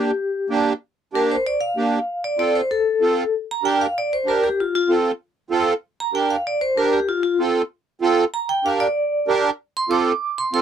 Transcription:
Already playing: A#3 D4 G4
0.49 A#3 D4 G4
1.13 A#3 D4 G4 A#4
1.31 C5
1.47 D5
1.61 F5
1.76 A#3 D4 G4
2.24 D5
2.38 C4 F4 A4 D5
2.55 C5
2.71 A4
3.01 C4 F4 A4
3.51 A#5
3.63 D4 G4 A#4 G5
3.81 F5
3.98 D5
4.13 C5
4.26 D4 G4 A#4
4.44 G4
4.60 F4
4.75 F4
4.89 C4 F4 A4
5.50 C4 F4 A4
6.00 A#5
6.13 D4 G4 A#4 G5
6.31 F5
6.47 D5
6.61 C5
6.77 D4 G4 A#4
6.93 G4
7.09 F4
7.23 F4
7.39 C4 F4 A4
8.01 C4 F4 A4
8.34 A#5
8.49 G5
8.65 D4 G4 A#4 F5
8.80 D5
9.28 D4 G4 A#4
9.77 C6
9.90 C4 F4 A4 D6
10.38 C6
10.53 C4 F4 A4 C6

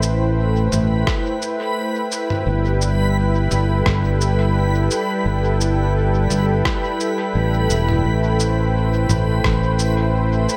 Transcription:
Already playing: A1 A3 E4 B4 C5 G5 B5
0.02 cabasa
0.72 A1, mid tom, cabasa
1.07 kick, cross-stick
1.42 cabasa
2.12 cabasa
2.30 mid tom
2.47 G1 G3
2.81 cabasa
3.41 A4
3.51 G1, mid tom, cabasa
3.86 G1, kick, cross-stick
4.21 cabasa
4.91 cabasa
5.26 G1
5.61 cabasa
6.30 G1, mid tom, cabasa
6.65 kick, cross-stick
7.00 cabasa
7.35 A1
7.70 E1, cabasa
7.89 mid tom
8.05 A1 A3
8.36 C5, cabasa
9.09 A1, mid tom, cabasa
9.44 A1, kick, cross-stick
9.79 cabasa
10.49 cabasa

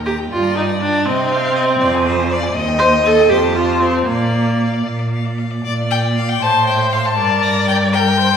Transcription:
Already playing: D#2
0.06 G4 A#5
0.19 G5
0.31 G2 F4 D5 G5
0.43 A#5
0.56 D#4 G5
0.69 A#5
0.81 D4 G5
0.94 A#5
1.05 C3 C4 D#5
1.19 G5
1.32 D#5 F5
1.44 G5
1.56 D#5
1.71 G5
1.80 F2 D5 F5
1.95 G#5
2.06 C5 F5
2.20 G#5
2.31 D5 F5
2.43 G#5
2.54 D#2 D#5
2.68 G5
2.79 C5 D#5
2.93 G5
3.04 A4 D#5
3.19 G5
3.29 F2 G4 C5 C6
3.44 A5
3.55 F4 C6
3.69 A5
3.80 C4 C6
3.95 A5
4.06 A#2 A#3 D5 F5
4.22 D5
4.35 F5
4.47 D5
4.62 F5
4.74 D5
4.85 A#2 F5
4.99 D5
5.13 F5
5.25 D5
5.39 F5
5.51 D5
5.64 A#2 D5
5.91 G5
6.16 F5
6.29 G5
6.41 A2 C5 A5
6.67 G5
6.93 F5
7.05 A5
7.17 G2 A#4 D5
7.43 A#5
7.68 G5
7.93 A#4 G5
8.18 C5
8.31 A4

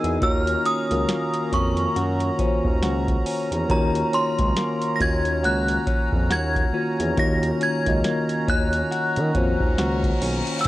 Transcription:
Already playing: E3 A#3 B3 D#4 E4 F#4 G#4 A#4 C#5 G#5 E6
0.04 E2, closed hi-hat
0.20 D#2 D#3 A#3 C#4 F4 F#4 C#5 A#5 E6, kick, closed hi-hat
0.34 F6
0.47 closed hi-hat
0.65 C#4 D#6, closed hi-hat
0.89 C#2 D#3 A#3 F4 F#4 A#4, closed hi-hat
1.09 A#3, snare, closed hi-hat
1.34 closed hi-hat
1.52 F2 C#4 C#6, kick, closed hi-hat
1.77 closed hi-hat
1.96 F#2 F#4, closed hi-hat
2.20 closed hi-hat
2.38 D#3 A#3 C#4 F4 F#4 C5, kick, closed hi-hat
2.47 C#5
2.65 D#2, kick
2.83 C#2 F#4, snare, closed hi-hat
3.08 kick, closed hi-hat
3.26 C#4, open hi-hat
3.52 E2, closed hi-hat
3.68 D#2 D#3 A#3 F4 F#4 C#5 A#5, kick, closed hi-hat
3.95 closed hi-hat
4.13 C#4 C6, closed hi-hat
4.39 C#2, kick, closed hi-hat
4.57 A#3, snare, closed hi-hat
4.82 closed hi-hat
4.96 D#3 A#3 A#6
5.00 D#2 C#4 F4 F#4 C#5 G#6, kick, closed hi-hat
5.25 closed hi-hat
5.44 C#2 F#4 F#6, closed hi-hat
5.68 closed hi-hat
5.87 C#4, kick, closed hi-hat
6.13 F2, kick
6.30 D#2 F#4 G#6, snare, closed hi-hat
6.56 kick, closed hi-hat
6.73 D#3 A#3 C#4 F4 F#4 C#5
7.00 E2, closed hi-hat
7.16 D#2 D#3 A#3 F4 F#4 C#5 A#6, kick, closed hi-hat
7.43 closed hi-hat
7.61 C#4 G#6, closed hi-hat
7.85 C#2 D#3 A#3 F4 F#4 D#5, kick, closed hi-hat
8.04 A#3, snare, closed hi-hat
8.29 closed hi-hat
8.48 D#2 C#4 F#6, kick, closed hi-hat
8.73 closed hi-hat
8.91 F#4, closed hi-hat, reverse cymbal
9.16 D#3, closed hi-hat
9.34 F2 D#3 A#3 C#4 F4 F#4 C5, kick, closed hi-hat
9.60 D#2, kick
9.78 C#2 F#4, snare, closed hi-hat
10.03 kick, closed hi-hat
10.22 B1 C#4, open hi-hat
10.47 closed hi-hat
10.59 E6, closed hi-hat
10.64 A#2 A#3

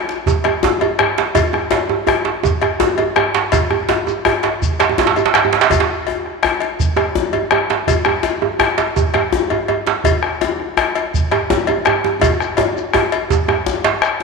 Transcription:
0.09 djembe slap
0.26 bombo low, djembe tone, shekere
0.44 bombo rim, cowbell, djembe slap, djembe tone
0.63 djembe slap, djembe tone, djembe bass
0.81 cowbell, djembe tone
0.99 bombo rim, cowbell, djembe tone
1.18 djembe slap
1.35 bombo low, cowbell, djembe tone, djembe bass, shekere
1.53 bombo rim, djembe tone
1.71 cowbell, djembe slap, djembe tone
1.89 bombo rim, djembe tone
2.07 bombo rim, cowbell, djembe tone, djembe bass
2.25 djembe slap
2.43 bombo low, djembe tone, shekere
2.62 bombo rim, cowbell, djembe slap, djembe tone
2.80 djembe slap, djembe tone, djembe bass
2.98 cowbell, djembe tone
3.16 bombo rim, cowbell, djembe tone
3.34 djembe slap
3.52 bombo low, cowbell, djembe tone, djembe bass, shekere
3.71 bombo rim, djembe slap, djembe tone
3.89 cowbell, djembe slap, djembe tone
4.07 djembe tone, shekere
4.25 bombo rim, cowbell, djembe tone, djembe bass
4.43 cowbell, djembe slap
4.62 bombo rim, bombo low, shekere
4.80 bombo rim, cowbell, djembe slap, shekere
4.89 djembe tone
4.98 bombo rim, djembe slap, djembe tone, djembe bass
5.07 djembe slap
5.16 cowbell, djembe tone, shekere
5.26 djembe slap
5.34 bombo rim, cowbell, djembe slap
5.45 djembe tone
5.53 djembe slap
5.61 djembe slap
5.70 bombo low, cowbell, djembe tone, djembe bass, shekere
5.80 djembe slap
6.07 cowbell, djembe tone
6.26 bombo rim
6.43 bombo rim, cowbell, djembe bass
6.60 cowbell, djembe slap
6.80 bombo low, shekere
6.96 bombo rim, cowbell, djembe slap, djembe tone
7.15 djembe slap, djembe tone, djembe bass
7.33 cowbell, djembe tone
7.51 bombo rim, cowbell, djembe tone
7.70 djembe slap
7.87 bombo low, cowbell, djembe tone, djembe bass, shekere
8.05 bombo rim, djembe tone
8.23 cowbell, djembe slap, djembe tone
8.41 bombo rim, djembe tone
8.59 bombo rim, cowbell, djembe tone, djembe bass
8.78 cowbell, djembe slap
8.96 bombo low, djembe tone, shekere
9.14 bombo rim, cowbell, djembe tone
9.33 djembe slap, djembe tone, djembe bass
9.50 cowbell, djembe tone
9.68 cowbell, djembe tone
9.87 djembe slap
10.04 bombo low, cowbell, djembe tone, djembe bass, shekere
10.23 bombo rim
10.41 cowbell, djembe slap, djembe tone
10.60 bombo rim
10.77 bombo rim, cowbell, djembe bass
10.95 cowbell, djembe slap
11.14 bombo low, shekere
11.31 bombo rim, cowbell, djembe slap, djembe tone
11.50 djembe slap, djembe tone, djembe bass
11.67 cowbell, djembe tone
11.85 bombo rim, cowbell, djembe tone
12.04 djembe slap, djembe tone
12.21 bombo low, cowbell, djembe tone, djembe bass, shekere
12.40 bombo rim, shekere
12.57 bombo rim, cowbell, djembe slap, djembe tone
12.77 shekere
12.93 bombo rim, cowbell, djembe tone, djembe bass
13.12 cowbell, djembe slap
13.30 bombo rim, bombo low, djembe tone, shekere
13.48 bombo rim, djembe tone
13.66 bombo rim, djembe slap, djembe bass, shekere
13.84 bombo rim, cowbell, djembe slap
14.02 bombo rim, cowbell, djembe slap, shekere

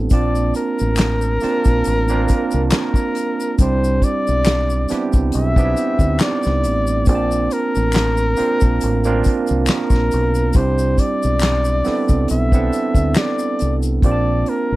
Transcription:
Already playing: B3 C4 D4 E4 G4 A4
0.10 A#1 A#3 C4 D4 F4 D5 A5, kick, closed hi-hat, shaker
0.35 shaker
0.54 A#4, closed hi-hat, shaker
0.79 A1, shaker
0.96 finger snap, snare, clap, closed hi-hat, shaker
1.21 shaker
1.41 A#3 C4 D4 F4 A5, muted fingered electric bass stroke, snare, closed hi-hat, shaker
1.65 A#1, kick, closed hi-hat, shaker
1.84 A1, closed hi-hat, shaker
2.08 A#3 C4 D4 F4 A#4, shaker
2.28 kick, closed hi-hat, shaker
2.51 C2, closed hi-hat, shaker
2.71 A#4, finger snap, snare, clap, closed hi-hat, shaker
2.94 kick, shaker
3.15 closed hi-hat, shaker
3.40 shaker
3.58 C2 G3 C4 D4 E4 G4 C5, kick, closed hi-hat, shaker
3.84 shaker
4.02 D5, kick, closed hi-hat, shaker
4.27 B1, shaker
4.45 finger snap, snare, clap, closed hi-hat, shaker
4.70 shaker
4.89 B3 C4 D4 E4 G4, muted fingered electric bass stroke, snare, closed hi-hat, shaker
5.13 C2, kick, closed hi-hat, shaker
5.32 B1 E5, closed hi-hat, shaker
5.56 B3 C4 D4 D#4 G4, kick, shaker
5.65 E4
5.77 closed hi-hat, shaker
5.99 D2, kick, shaker
6.19 D5, finger snap, snare, clap, closed hi-hat, shaker
6.43 C2, snare, shaker
6.64 A1, closed hi-hat, shaker
6.87 shaker
7.06 A#1 A#3 C4 D4 F4 G#4 D5, kick, closed hi-hat, shaker
7.15 A5
7.31 shaker
7.51 A#4, closed hi-hat, shaker
7.75 A1, shaker
7.92 finger snap, clap, closed hi-hat, shaker
7.96 snare
8.17 shaker
8.37 A#3 C4 D4 F4 A#4, muted fingered electric bass stroke, closed hi-hat, shaker
8.60 A#1, kick, closed hi-hat, shaker
8.81 A1, closed hi-hat, shaker
9.04 A#3 C4 D4 F4 A#4, shaker
9.24 kick, closed hi-hat, shaker
9.47 C2, shaker
9.66 A#4, finger snap, snare, clap, closed hi-hat, shaker
9.90 A#1, kick, snare, shaker
10.11 B1, closed hi-hat, shaker
10.35 shaker
10.53 C2 G3 C4 D4 E4 G4 C5, kick, closed hi-hat, shaker
10.78 shaker
10.98 D5, kick, closed hi-hat, shaker
11.23 B1, shaker
11.40 finger snap, snare, clap, closed hi-hat, shaker
11.65 shaker
11.84 B3 C4 D4 E4 A4, muted fingered electric bass stroke, snare, open hi-hat, shaker
12.08 C2, kick, closed hi-hat, shaker
12.28 B1 E5, closed hi-hat, shaker
12.52 B3 C4 D4 E4 A4, kick, shaker
12.73 closed hi-hat, shaker
12.95 D2, kick, closed hi-hat, shaker
13.15 D5, finger snap, snare, clap, closed hi-hat, shaker
13.39 shaker
13.59 C2, closed hi-hat, shaker
13.83 closed hi-hat, shaker
14.02 A#1 A#3 C4 D4 F4 G4 D5, kick, closed hi-hat
14.11 A5
14.46 A#4, closed hi-hat
14.72 A1

